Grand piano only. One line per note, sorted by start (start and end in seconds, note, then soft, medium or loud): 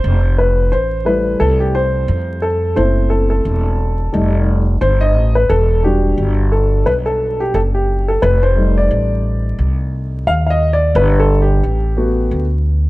0.00 0.35 C5 loud
0.38 0.73 B4 medium
0.72 1.07 C5 medium
1.05 2.72 G3 medium
1.05 2.73 A3 soft
1.05 2.73 E4 medium
1.05 1.41 B4 medium
1.40 1.61 A4 loud
1.60 1.75 G4 medium
1.75 2.45 C5 loud
2.42 2.78 A4 medium
2.76 3.75 A3 medium
2.76 3.75 C4 medium
2.76 3.75 E4 medium
2.76 3.08 C5 medium
3.10 3.28 A4 medium
3.30 4.29 A4 medium
4.12 4.60 G3 medium
4.12 4.61 A3 medium
4.12 4.61 D#4 medium
4.81 5.02 C5 loud
5.01 5.33 D#5 loud
5.35 5.49 B4 medium
5.49 5.81 A4 medium
5.84 8.19 G3 soft
5.84 8.19 D4 medium
5.84 8.18 F#4 medium
5.84 6.48 G4 medium
6.52 6.87 A4 medium
6.86 6.91 B4 medium
7.06 7.41 A4 medium
7.40 7.55 G4 medium
7.55 7.60 A4 medium
7.74 8.09 G4 medium
8.08 8.23 A4 medium
8.22 8.43 B4 medium
8.43 8.78 C5 medium
8.56 10.91 G3 medium
8.56 10.91 A3 soft
8.56 10.91 D#4 medium
8.78 9.75 D5 medium
10.27 10.32 F5 loud
10.46 10.73 D#5 loud
10.46 10.49 F5 medium
10.73 10.94 D5 loud
10.96 11.19 B4 medium
11.20 11.42 A4 medium
11.42 12.39 G4 medium
11.97 12.45 A3 medium
11.97 12.45 B3 medium
11.97 12.45 F#4 medium